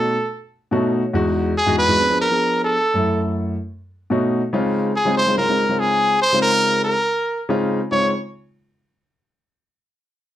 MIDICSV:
0, 0, Header, 1, 3, 480
1, 0, Start_track
1, 0, Key_signature, -5, "major"
1, 0, Tempo, 422833
1, 1301, Time_signature, 4, 2, 24, 8
1, 11757, End_track
2, 0, Start_track
2, 0, Title_t, "Trumpet"
2, 0, Program_c, 0, 56
2, 0, Note_on_c, 0, 69, 93
2, 350, Note_off_c, 0, 69, 0
2, 1787, Note_on_c, 0, 68, 93
2, 2008, Note_off_c, 0, 68, 0
2, 2023, Note_on_c, 0, 71, 112
2, 2469, Note_off_c, 0, 71, 0
2, 2513, Note_on_c, 0, 70, 95
2, 2955, Note_off_c, 0, 70, 0
2, 2999, Note_on_c, 0, 69, 85
2, 3666, Note_off_c, 0, 69, 0
2, 5629, Note_on_c, 0, 68, 80
2, 5850, Note_off_c, 0, 68, 0
2, 5871, Note_on_c, 0, 72, 104
2, 6091, Note_off_c, 0, 72, 0
2, 6103, Note_on_c, 0, 70, 98
2, 6575, Note_on_c, 0, 68, 94
2, 6592, Note_off_c, 0, 70, 0
2, 7048, Note_off_c, 0, 68, 0
2, 7055, Note_on_c, 0, 72, 112
2, 7282, Note_off_c, 0, 72, 0
2, 7286, Note_on_c, 0, 70, 116
2, 7740, Note_off_c, 0, 70, 0
2, 7767, Note_on_c, 0, 70, 88
2, 8449, Note_off_c, 0, 70, 0
2, 8986, Note_on_c, 0, 73, 88
2, 9207, Note_off_c, 0, 73, 0
2, 11757, End_track
3, 0, Start_track
3, 0, Title_t, "Grand piano"
3, 0, Program_c, 1, 0
3, 0, Note_on_c, 1, 47, 78
3, 0, Note_on_c, 1, 57, 71
3, 0, Note_on_c, 1, 61, 66
3, 0, Note_on_c, 1, 63, 72
3, 0, Note_on_c, 1, 66, 89
3, 171, Note_off_c, 1, 47, 0
3, 173, Note_off_c, 1, 61, 0
3, 174, Note_off_c, 1, 57, 0
3, 177, Note_off_c, 1, 63, 0
3, 178, Note_off_c, 1, 66, 0
3, 809, Note_on_c, 1, 47, 90
3, 815, Note_on_c, 1, 57, 87
3, 816, Note_on_c, 1, 61, 78
3, 820, Note_on_c, 1, 81, 70
3, 823, Note_on_c, 1, 63, 85
3, 824, Note_on_c, 1, 66, 98
3, 1044, Note_off_c, 1, 81, 0
3, 1068, Note_on_c, 1, 73, 74
3, 1151, Note_off_c, 1, 47, 0
3, 1154, Note_off_c, 1, 57, 0
3, 1154, Note_off_c, 1, 61, 0
3, 1158, Note_off_c, 1, 63, 0
3, 1158, Note_off_c, 1, 66, 0
3, 1288, Note_off_c, 1, 73, 0
3, 1288, Note_on_c, 1, 40, 93
3, 1295, Note_on_c, 1, 56, 82
3, 1299, Note_on_c, 1, 63, 77
3, 1306, Note_on_c, 1, 66, 110
3, 1715, Note_off_c, 1, 40, 0
3, 1718, Note_off_c, 1, 56, 0
3, 1721, Note_off_c, 1, 63, 0
3, 1724, Note_off_c, 1, 66, 0
3, 1887, Note_on_c, 1, 40, 78
3, 1890, Note_on_c, 1, 56, 68
3, 1897, Note_on_c, 1, 63, 76
3, 1905, Note_on_c, 1, 66, 97
3, 2062, Note_off_c, 1, 40, 0
3, 2064, Note_off_c, 1, 56, 0
3, 2067, Note_off_c, 1, 63, 0
3, 2071, Note_off_c, 1, 66, 0
3, 2129, Note_on_c, 1, 40, 79
3, 2131, Note_on_c, 1, 56, 73
3, 2137, Note_on_c, 1, 63, 64
3, 2144, Note_on_c, 1, 66, 85
3, 2220, Note_off_c, 1, 40, 0
3, 2220, Note_off_c, 1, 56, 0
3, 2224, Note_off_c, 1, 63, 0
3, 2227, Note_off_c, 1, 66, 0
3, 2253, Note_on_c, 1, 53, 62
3, 2260, Note_on_c, 1, 62, 63
3, 2262, Note_on_c, 1, 59, 59
3, 2270, Note_on_c, 1, 68, 77
3, 2342, Note_off_c, 1, 53, 0
3, 2345, Note_off_c, 1, 62, 0
3, 2346, Note_off_c, 1, 59, 0
3, 2350, Note_off_c, 1, 68, 0
3, 2370, Note_on_c, 1, 53, 67
3, 2375, Note_on_c, 1, 59, 65
3, 2383, Note_on_c, 1, 62, 58
3, 2387, Note_on_c, 1, 68, 74
3, 2544, Note_off_c, 1, 53, 0
3, 2547, Note_off_c, 1, 59, 0
3, 2550, Note_off_c, 1, 62, 0
3, 2552, Note_off_c, 1, 68, 0
3, 2610, Note_on_c, 1, 53, 67
3, 2616, Note_on_c, 1, 59, 57
3, 2623, Note_on_c, 1, 62, 59
3, 2632, Note_on_c, 1, 68, 70
3, 3121, Note_off_c, 1, 53, 0
3, 3124, Note_off_c, 1, 59, 0
3, 3127, Note_off_c, 1, 62, 0
3, 3132, Note_off_c, 1, 68, 0
3, 3336, Note_on_c, 1, 42, 74
3, 3342, Note_on_c, 1, 57, 72
3, 3351, Note_on_c, 1, 64, 80
3, 3353, Note_on_c, 1, 69, 89
3, 4012, Note_off_c, 1, 42, 0
3, 4015, Note_off_c, 1, 57, 0
3, 4019, Note_off_c, 1, 64, 0
3, 4020, Note_off_c, 1, 69, 0
3, 4655, Note_on_c, 1, 47, 91
3, 4657, Note_on_c, 1, 57, 82
3, 4664, Note_on_c, 1, 61, 79
3, 4670, Note_on_c, 1, 63, 88
3, 4674, Note_on_c, 1, 66, 97
3, 4996, Note_off_c, 1, 47, 0
3, 4996, Note_off_c, 1, 57, 0
3, 5000, Note_off_c, 1, 61, 0
3, 5003, Note_off_c, 1, 63, 0
3, 5005, Note_off_c, 1, 66, 0
3, 5140, Note_on_c, 1, 49, 95
3, 5142, Note_on_c, 1, 56, 86
3, 5146, Note_on_c, 1, 60, 81
3, 5149, Note_on_c, 1, 63, 79
3, 5154, Note_on_c, 1, 65, 109
3, 5562, Note_off_c, 1, 49, 0
3, 5563, Note_off_c, 1, 56, 0
3, 5565, Note_off_c, 1, 60, 0
3, 5566, Note_off_c, 1, 63, 0
3, 5569, Note_off_c, 1, 65, 0
3, 5733, Note_on_c, 1, 49, 85
3, 5737, Note_on_c, 1, 56, 76
3, 5742, Note_on_c, 1, 60, 79
3, 5745, Note_on_c, 1, 63, 75
3, 5748, Note_on_c, 1, 65, 85
3, 5906, Note_off_c, 1, 49, 0
3, 5908, Note_off_c, 1, 56, 0
3, 5911, Note_off_c, 1, 60, 0
3, 5912, Note_off_c, 1, 63, 0
3, 5914, Note_off_c, 1, 65, 0
3, 5975, Note_on_c, 1, 49, 73
3, 5977, Note_on_c, 1, 56, 65
3, 5986, Note_on_c, 1, 60, 65
3, 5992, Note_on_c, 1, 63, 70
3, 5993, Note_on_c, 1, 65, 80
3, 6063, Note_off_c, 1, 49, 0
3, 6064, Note_off_c, 1, 56, 0
3, 6069, Note_off_c, 1, 60, 0
3, 6072, Note_off_c, 1, 63, 0
3, 6072, Note_off_c, 1, 65, 0
3, 6099, Note_on_c, 1, 49, 71
3, 6101, Note_on_c, 1, 56, 61
3, 6110, Note_on_c, 1, 60, 59
3, 6110, Note_on_c, 1, 63, 61
3, 6115, Note_on_c, 1, 65, 83
3, 6185, Note_off_c, 1, 49, 0
3, 6186, Note_off_c, 1, 56, 0
3, 6191, Note_off_c, 1, 60, 0
3, 6191, Note_off_c, 1, 63, 0
3, 6193, Note_off_c, 1, 65, 0
3, 6226, Note_on_c, 1, 49, 70
3, 6226, Note_on_c, 1, 56, 62
3, 6231, Note_on_c, 1, 60, 61
3, 6237, Note_on_c, 1, 63, 63
3, 6240, Note_on_c, 1, 65, 72
3, 6393, Note_off_c, 1, 49, 0
3, 6393, Note_off_c, 1, 56, 0
3, 6395, Note_off_c, 1, 60, 0
3, 6398, Note_off_c, 1, 63, 0
3, 6399, Note_off_c, 1, 65, 0
3, 6455, Note_on_c, 1, 49, 69
3, 6458, Note_on_c, 1, 56, 58
3, 6466, Note_on_c, 1, 60, 60
3, 6466, Note_on_c, 1, 63, 59
3, 6477, Note_on_c, 1, 65, 72
3, 6963, Note_off_c, 1, 49, 0
3, 6964, Note_off_c, 1, 56, 0
3, 6968, Note_off_c, 1, 60, 0
3, 6968, Note_off_c, 1, 63, 0
3, 6974, Note_off_c, 1, 65, 0
3, 7180, Note_on_c, 1, 49, 81
3, 7187, Note_on_c, 1, 56, 69
3, 7191, Note_on_c, 1, 60, 70
3, 7193, Note_on_c, 1, 63, 69
3, 7198, Note_on_c, 1, 65, 91
3, 7853, Note_off_c, 1, 49, 0
3, 7857, Note_off_c, 1, 56, 0
3, 7859, Note_off_c, 1, 60, 0
3, 7860, Note_off_c, 1, 63, 0
3, 7862, Note_off_c, 1, 65, 0
3, 8501, Note_on_c, 1, 49, 95
3, 8501, Note_on_c, 1, 56, 78
3, 8508, Note_on_c, 1, 60, 86
3, 8512, Note_on_c, 1, 63, 87
3, 8517, Note_on_c, 1, 65, 109
3, 8837, Note_off_c, 1, 49, 0
3, 8837, Note_off_c, 1, 56, 0
3, 8840, Note_off_c, 1, 60, 0
3, 8843, Note_off_c, 1, 63, 0
3, 8845, Note_off_c, 1, 65, 0
3, 8984, Note_on_c, 1, 60, 70
3, 8986, Note_on_c, 1, 63, 65
3, 8987, Note_on_c, 1, 65, 79
3, 8988, Note_on_c, 1, 49, 72
3, 8988, Note_on_c, 1, 56, 66
3, 9206, Note_off_c, 1, 60, 0
3, 9207, Note_off_c, 1, 63, 0
3, 9208, Note_off_c, 1, 49, 0
3, 9208, Note_off_c, 1, 56, 0
3, 9208, Note_off_c, 1, 65, 0
3, 11757, End_track
0, 0, End_of_file